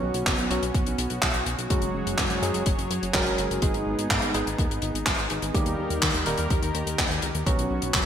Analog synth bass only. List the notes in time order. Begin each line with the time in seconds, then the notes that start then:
0.03 B1
0.14 B1
0.26 F#1
0.39 B1
0.50 B1
0.62 B1
0.74 F#1
0.86 B1
0.98 B1
1.10 B1
1.22 B1
1.34 B1
1.46 B1
1.58 B1
1.70 F#1
1.82 F#1
1.94 F#1
2.06 F#1
2.18 F#1
2.30 F#1
2.42 F#2
2.54 F#1
2.66 F#1
2.78 F#1
2.90 F#1
3.02 F#1
3.14 F#1
3.26 F#1
3.38 F#1
3.50 F#1
3.62 G#1
3.74 G#1
3.86 G#1
3.98 G#1
4.10 G#2
4.22 G#1
4.34 G#1
4.47 G#1
4.59 D#2
4.70 G#1
4.82 G#1
4.95 G#1
5.07 G#1
5.19 G#1
5.31 G#1
5.43 G#1
5.55 D#2
5.67 D#2
5.79 D#2
5.90 D#2
6.02 D#2
6.14 D#2
6.26 D#1
6.39 D#2
6.50 D#2
6.62 D#2
6.75 D#2
6.87 D#2
6.98 D#2
7.11 D#2
7.23 C#2
7.35 D#2
7.46 B1
7.59 B1
7.71 B1
7.83 B1
7.94 F#1